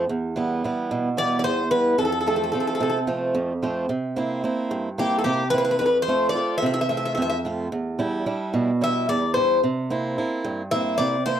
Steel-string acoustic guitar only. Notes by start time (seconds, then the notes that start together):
0.09 E2
0.36 E3 G3 B3
0.64 E3 G3 B3
0.91 B2
1.17 E3 G3 B3
1.45 E2
1.71 E3 G3 B3
1.98 F2
2.26 F3 A3 C4
2.53 F3 A3 C4
2.80 C3
3.07 F3 A3 C4
3.35 F2
3.63 F3 A3 C4
3.89 C3
4.16 A#3 C4 E4
4.44 A#3 C4 E4
4.71 G2
4.98 A#3 C4 E4
5.26 C3
5.53 A#3 C4 E4
5.81 F2
6.08 A3 C4 F4
6.35 A3 C4 F4
6.62 C3
6.90 A3 C4 F4
7.17 F2
7.45 A3 C4 F4
7.72 E2
7.99 G3 D4 E4
8.26 G3 D4 E4
8.54 B2
8.81 G3 D4 E4
9.09 E2
9.36 G3 D4 E4
9.64 C3
9.90 A#3 C4 E4
10.18 A#3 C4 E4
10.44 G2
10.72 A#3 C4 E4
10.99 C3
11.26 A#3 C4 E4